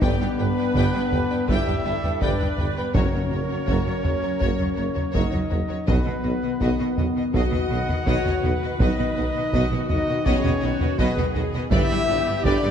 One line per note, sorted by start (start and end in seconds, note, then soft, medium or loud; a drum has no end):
0.01 0.10 G1 loud
0.01 0.10 G2 loud
0.01 2.79 G3 medium
0.01 1.46 B3 loud
0.01 2.79 D4 medium
0.01 0.38 G4 medium
0.01 0.19 B4 medium
0.01 1.51 B4 medium
0.01 0.19 D5 medium
0.01 0.19 G5 loud
0.01 taiko loud
0.21 0.29 G2 medium
0.21 0.28 B4 medium
0.21 0.28 D5 medium
0.21 0.29 G5 medium
0.38 0.46 G1 medium
0.38 0.47 G1 medium
0.38 0.47 G2 medium
0.38 1.48 B4 medium
0.38 0.47 B4 medium
0.38 0.46 D5 medium
0.38 0.46 G5 medium
0.57 0.65 G2 medium
0.57 0.64 B4 medium
0.57 0.65 D5 medium
0.57 0.66 G5 medium
0.75 0.82 G1 loud
0.75 0.83 G1 loud
0.75 0.84 G2 medium
0.75 0.93 B4 loud
0.75 0.93 D5 medium
0.75 0.93 G5 medium
0.75 taiko medium
0.94 1.02 G2 medium
0.94 1.02 B4 medium
0.94 1.01 D5 medium
0.94 1.02 G5 medium
1.11 1.19 G1 medium
1.11 1.20 G1 medium
1.11 1.20 G2 medium
1.11 1.20 B4 medium
1.11 1.20 D5 medium
1.11 1.20 G5 medium
1.11 taiko low medium
1.30 1.39 G2 medium
1.30 1.37 B4 medium
1.30 1.37 D5 medium
1.30 1.38 G5 medium
1.48 1.56 G1 loud
1.48 1.56 G2 medium
1.48 2.23 E4 loud
1.48 1.85 G4 medium
1.48 1.65 B4 medium
1.48 1.65 D5 medium
1.48 2.24 E5 loud
1.48 1.66 G5 loud
1.48 taiko medium
1.66 1.75 G2 medium
1.66 1.74 B4 medium
1.66 1.74 D5 medium
1.66 1.75 G5 medium
1.66 taiko low soft
1.84 1.93 G1 medium
1.84 1.93 G2 medium
1.84 2.22 A4 medium
1.84 1.92 B4 medium
1.84 1.92 D5 medium
1.84 1.93 G5 medium
2.03 2.11 G2 medium
2.03 2.11 B4 medium
2.03 2.10 D5 medium
2.03 2.11 G5 medium
2.03 taiko low medium
2.20 2.29 G1 medium
2.20 2.30 G1 medium
2.20 2.30 G2 medium
2.20 2.61 D4 medium
2.20 2.38 B4 medium
2.20 2.95 B4 medium
2.20 2.38 D5 medium
2.20 2.79 D5 medium
2.20 2.39 G5 medium
2.20 taiko medium
2.39 2.48 G2 medium
2.39 2.47 B4 medium
2.39 2.47 D5 medium
2.39 2.47 G5 medium
2.39 taiko low medium
2.58 2.66 G1 medium
2.58 2.67 G1 medium
2.58 2.66 G2 soft
2.58 2.65 B4 medium
2.58 2.65 D5 medium
2.58 2.67 G5 medium
2.58 taiko low medium
2.77 2.84 G2 medium
2.77 2.95 B3 medium
2.77 2.95 B4 medium
2.77 2.84 B4 medium
2.77 2.96 B4 medium
2.77 2.84 D5 medium
2.77 2.84 G5 medium
2.94 3.03 F#1 medium
2.94 3.02 F#2 medium
2.94 4.01 F#2 medium
2.94 5.52 F#3 medium
2.94 5.52 A#3 medium
2.94 5.15 C#4 medium
2.94 3.11 F#4 medium
2.94 3.11 A#4 medium
2.94 5.47 A#4 medium
2.94 3.11 C#5 medium
2.94 5.16 C#5 medium
2.94 5.17 C#5 medium
2.94 taiko loud
3.12 3.21 F#2 soft
3.12 3.20 F#4 medium
3.12 3.20 A#4 medium
3.12 3.21 C#5 soft
3.30 3.39 F#1 medium
3.30 3.39 F#2 soft
3.30 3.38 F#4 soft
3.30 3.38 A#4 soft
3.30 3.39 C#5 soft
3.49 3.57 F#2 medium
3.49 3.57 F#4 medium
3.49 3.56 A#4 soft
3.49 3.57 C#5 medium
3.66 3.75 F#1 medium
3.66 3.76 F#1 medium
3.66 3.75 F#2 medium
3.66 3.84 F#4 medium
3.66 3.84 A#4 medium
3.66 3.85 C#5 medium
3.66 taiko medium
3.85 3.93 F#2 soft
3.85 3.93 F#4 soft
3.85 3.93 A#4 medium
3.85 3.94 C#5 soft
4.03 4.13 F#1 soft
4.03 4.12 F#2 soft
4.03 4.11 F#4 medium
4.03 4.11 A#4 medium
4.03 4.11 C#5 medium
4.03 taiko low medium
4.21 4.31 F#2 medium
4.21 4.29 F#4 medium
4.21 4.29 A#4 medium
4.21 4.29 C#5 medium
4.39 4.49 F#1 medium
4.39 4.49 F#2 medium
4.39 4.56 F#4 medium
4.39 4.56 A#4 medium
4.39 4.56 C#5 medium
4.39 taiko medium
4.58 4.67 F#2 medium
4.58 4.65 F#4 medium
4.58 4.65 A#4 medium
4.58 4.65 C#5 medium
4.58 taiko low soft
4.75 4.85 F#1 medium
4.75 4.86 F#1 soft
4.75 4.85 F#2 medium
4.75 4.83 F#4 medium
4.75 4.83 A#4 medium
4.75 4.84 C#5 soft
4.94 5.04 F#2 medium
4.94 5.02 F#4 medium
4.94 5.02 A#4 medium
4.94 5.02 C#5 soft
4.94 taiko low medium
5.11 5.22 F#1 medium
5.11 5.22 F#2 medium
5.11 5.86 D#4 medium
5.11 5.30 F#4 medium
5.11 5.30 A#4 medium
5.11 5.29 C#5 medium
5.11 5.87 D#5 medium
5.11 taiko medium
5.15 5.23 F#1 medium
5.15 5.88 D#5 medium
5.30 5.40 F#2 soft
5.30 5.39 F#4 medium
5.30 5.39 A#4 medium
5.30 5.38 C#5 medium
5.30 taiko low medium
5.50 5.59 F#1 medium
5.50 5.59 F#1 soft
5.50 5.58 F#2 soft
5.50 5.58 F#4 soft
5.50 5.58 A#4 medium
5.50 5.58 C#5 soft
5.50 taiko low medium
5.68 5.77 F#2 medium
5.68 5.76 F#4 medium
5.68 5.75 A#4 medium
5.68 5.76 C#5 medium
5.86 5.95 B1 medium
5.86 5.96 B1 medium
5.86 5.95 B2 medium
5.86 8.77 D#3 medium
5.86 7.34 B3 medium
5.86 8.77 B3 medium
5.86 6.04 F#4 medium
5.86 6.04 B4 medium
5.86 7.04 B4 medium
5.86 6.03 D#5 medium
5.86 taiko loud
6.04 6.13 B2 medium
6.04 6.13 F#4 medium
6.04 6.13 B4 medium
6.04 6.12 D#5 soft
6.23 6.31 B1 medium
6.23 6.33 B1 medium
6.23 6.31 B2 soft
6.23 6.31 F#4 soft
6.23 6.31 B4 soft
6.23 6.31 D#5 soft
6.42 6.50 B2 medium
6.42 6.50 F#4 medium
6.42 6.50 B4 soft
6.42 6.50 D#5 soft
6.60 6.68 B1 medium
6.60 6.69 B1 medium
6.60 6.68 B2 medium
6.60 6.78 F#4 medium
6.60 6.78 B4 medium
6.60 6.78 D#5 medium
6.60 taiko medium
6.79 6.86 B2 medium
6.79 6.87 F#4 medium
6.79 6.87 B4 soft
6.79 6.86 D#5 medium
6.97 7.04 B1 medium
6.97 7.05 B1 soft
6.97 7.05 B2 soft
6.97 7.06 F#4 soft
6.97 7.06 B4 soft
6.97 7.06 D#5 medium
6.97 taiko low medium
7.16 7.23 B2 medium
7.16 7.23 F#4 medium
7.16 7.23 B4 medium
7.16 7.24 D#5 medium
7.34 7.41 B1 medium
7.34 7.41 B2 medium
7.34 7.51 F#4 medium
7.34 8.80 F#4 loud
7.34 7.51 B4 medium
7.34 8.03 D#5 medium
7.34 7.51 D#5 medium
7.34 8.76 F#5 medium
7.34 8.77 F#5 medium
7.34 taiko medium
7.52 7.59 B2 medium
7.52 7.60 F#4 medium
7.52 7.59 B4 medium
7.52 7.60 D#5 medium
7.52 taiko low soft
7.70 7.77 B1 medium
7.70 7.78 B1 medium
7.70 7.77 B2 medium
7.70 7.77 F#4 medium
7.70 7.78 B4 medium
7.70 7.79 D#5 soft
7.88 7.96 B2 medium
7.88 7.95 F#4 medium
7.88 7.95 B4 medium
7.88 7.97 D#5 medium
7.88 taiko low medium
8.06 8.14 B1 medium
8.06 8.14 B2 medium
8.06 8.24 F#4 medium
8.06 8.24 B4 medium
8.06 8.43 C#5 medium
8.06 8.24 D#5 loud
8.06 taiko medium
8.25 8.33 B2 medium
8.25 8.32 F#4 medium
8.25 8.32 B4 medium
8.25 8.34 D#5 medium
8.25 taiko low medium
8.43 8.51 B1 medium
8.43 8.51 B2 medium
8.43 8.50 F#4 medium
8.43 9.53 B4 medium
8.43 8.51 B4 medium
8.43 8.52 D#5 medium
8.43 taiko low medium
8.62 8.69 B2 medium
8.62 8.69 F#4 medium
8.62 8.69 B4 medium
8.62 8.70 D#5 medium
8.80 8.88 B1 medium
8.80 8.88 B1 loud
8.80 8.87 B2 medium
8.80 11.69 D#3 medium
8.80 12.71 B3 medium
8.80 9.73 D#4 medium
8.80 8.97 F#4 medium
8.80 8.97 B4 medium
8.80 9.87 D#5 medium
8.80 9.88 D#5 medium
8.80 8.97 D#5 medium
8.80 taiko loud
8.98 9.06 B2 medium
8.98 9.06 F#4 medium
8.98 9.06 B4 medium
8.98 9.05 D#5 soft
9.16 9.24 B1 medium
9.16 9.24 B2 medium
9.16 9.25 F#4 medium
9.16 9.25 B4 soft
9.16 9.24 D#5 soft
9.35 9.43 B2 medium
9.35 9.43 F#4 medium
9.35 9.43 B4 soft
9.35 9.42 D#5 medium
9.52 9.60 B1 loud
9.52 9.61 B1 loud
9.52 9.61 B2 medium
9.52 10.26 F#4 medium
9.52 9.71 F#4 medium
9.52 9.71 B4 medium
9.52 9.70 D#5 medium
9.52 taiko medium
9.71 9.79 B2 medium
9.71 9.80 F#4 medium
9.71 9.80 B4 medium
9.71 9.78 D#5 medium
9.89 9.97 B1 medium
9.89 9.97 B2 medium
9.89 10.26 D#4 loud
9.89 9.99 F#4 medium
9.89 9.99 B4 medium
9.89 9.97 D#5 medium
9.89 10.27 D#5 medium
9.89 10.28 D#5 medium
9.89 taiko low medium
10.08 10.16 B2 medium
10.08 10.17 F#4 medium
10.08 10.17 B4 medium
10.08 10.15 D#5 medium
10.25 10.34 B1 medium
10.25 10.34 B1 loud
10.25 10.34 B2 medium
10.25 10.99 C#4 loud
10.25 10.44 F#4 medium
10.25 10.62 G#4 medium
10.25 10.44 B4 medium
10.25 11.00 C#5 loud
10.25 11.01 C#5 medium
10.25 10.43 D#5 loud
10.25 taiko medium
10.44 10.52 B2 medium
10.44 10.53 F#4 medium
10.44 10.52 B4 medium
10.44 10.52 D#5 medium
10.44 taiko low medium
10.62 10.70 B1 medium
10.62 10.71 B1 medium
10.62 10.70 B2 medium
10.62 10.99 F#4 medium
10.62 10.71 F#4 medium
10.62 10.71 B4 medium
10.62 10.69 D#5 medium
10.81 10.89 B2 medium
10.81 10.88 F#4 medium
10.81 10.88 B4 medium
10.81 10.88 D#5 medium
10.81 taiko low medium
10.98 11.06 B1 loud
10.98 11.06 B1 medium
10.98 11.07 B2 loud
10.98 11.36 B3 medium
10.98 11.17 F#4 medium
10.98 11.73 G#4 medium
10.98 11.36 B4 medium
10.98 11.17 B4 loud
10.98 11.36 B4 medium
10.98 11.16 D#5 loud
10.98 taiko medium
11.17 11.25 B2 medium
11.17 11.25 F#4 medium
11.17 11.25 B4 medium
11.17 11.25 D#5 medium
11.17 taiko low medium
11.35 11.43 B1 medium
11.35 11.44 B2 medium
11.35 11.44 F#4 medium
11.35 11.44 B4 medium
11.35 11.42 D#5 medium
11.35 taiko low medium
11.53 11.62 B2 medium
11.53 11.62 F#4 medium
11.53 11.62 B4 medium
11.53 11.61 D#5 medium
11.71 11.79 G1 loud
11.71 11.80 G2 loud
11.71 12.71 D3 medium
11.71 12.41 E4 loud
11.71 12.71 G4 loud
11.71 11.90 G4 medium
11.71 11.90 B4 medium
11.71 11.89 D5 loud
11.71 12.46 E5 loud
11.71 12.42 E5 loud
11.71 taiko loud
11.90 11.99 G2 medium
11.90 11.98 G4 medium
11.90 11.98 B4 medium
11.90 11.97 D5 medium
12.07 12.16 G1 medium
12.07 12.17 G2 medium
12.07 12.17 G4 medium
12.07 12.17 B4 medium
12.07 12.15 D5 medium
12.26 12.36 G2 medium
12.26 12.35 G4 medium
12.26 12.35 B4 medium
12.26 12.33 D5 medium
12.44 12.53 G1 loud
12.44 12.53 G2 loud
12.44 12.71 D4 loud
12.44 12.62 G4 loud
12.44 12.62 B4 loud
12.44 12.71 D5 loud
12.44 12.61 D5 loud
12.44 12.71 D5 loud
12.44 taiko medium
12.62 12.71 G2 medium
12.62 12.71 G4 medium
12.62 12.71 B4 medium
12.62 12.70 D5 medium